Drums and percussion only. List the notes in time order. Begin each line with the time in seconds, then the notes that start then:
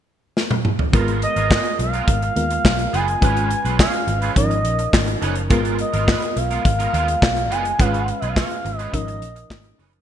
0.37 snare
0.51 high tom
0.65 mid tom
0.79 floor tom
0.93 kick, closed hi-hat
1.08 closed hi-hat
1.22 closed hi-hat
1.36 closed hi-hat
1.51 kick, snare, clap
1.65 closed hi-hat
1.79 closed hi-hat
1.93 closed hi-hat
2.08 kick, closed hi-hat
2.22 closed hi-hat
2.36 closed hi-hat
2.50 closed hi-hat
2.65 kick, snare, clap
2.79 closed hi-hat
2.94 closed hi-hat
3.08 closed hi-hat
3.22 kick, closed hi-hat
3.37 closed hi-hat
3.51 closed hi-hat
3.65 closed hi-hat
3.79 kick, snare, clap
3.94 closed hi-hat
4.08 closed hi-hat
4.22 closed hi-hat
4.36 kick, closed hi-hat
4.51 closed hi-hat
4.65 closed hi-hat
4.79 closed hi-hat
4.93 kick, snare, clap
5.07 closed hi-hat
5.22 closed hi-hat
5.35 closed hi-hat
5.50 kick, closed hi-hat
5.65 closed hi-hat
5.79 closed hi-hat
5.94 closed hi-hat
6.08 kick, snare, clap
6.22 closed hi-hat
6.37 closed hi-hat
6.51 closed hi-hat
6.65 kick, closed hi-hat
6.80 closed hi-hat
6.94 closed hi-hat
7.08 closed hi-hat
7.22 kick, snare, clap
7.37 closed hi-hat
7.52 closed hi-hat
7.65 closed hi-hat
7.80 kick, closed hi-hat
7.94 closed hi-hat
8.08 closed hi-hat
8.22 closed hi-hat
8.36 kick, snare, clap
8.51 closed hi-hat
8.66 closed hi-hat
8.79 closed hi-hat
8.94 kick, closed hi-hat
9.08 closed hi-hat
9.22 closed hi-hat
9.36 closed hi-hat
9.50 kick, snare, clap
9.64 closed hi-hat
9.79 open hi-hat
9.93 closed hi-hat